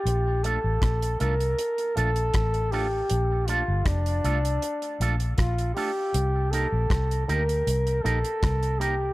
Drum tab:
HH |x-x-xxxxxxxxxxo-|x-x-xxxxxxxxxxo-|x-x-xxxxxxxxxxx-|
SD |----r-------r---|----r-------r---|----r-------r---|
BD |----o-------o---|----o-------o---|----o-------o---|